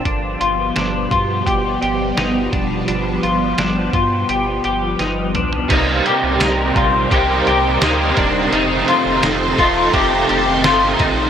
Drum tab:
CC |----------------|----------------|x---------------|----------------|
HH |x-x-x-x-x-x-x-x-|x-x-x-x-x-x-x-x-|x-x-x-x-x-x-x-x-|x-x-x-x-x-x-x-x-|
TB |----------------|----------------|----x-------x---|----x-------x---|
SD |----o-------o---|----o-------o---|----o-------o---|----o-------o---|
T2 |----------------|--------------o-|----------------|----------------|
FT |----------------|---------------o|----------------|----------------|
BD |o-----o-o-----o-|------o---------|o-----o-o-----o-|------o-o-----o-|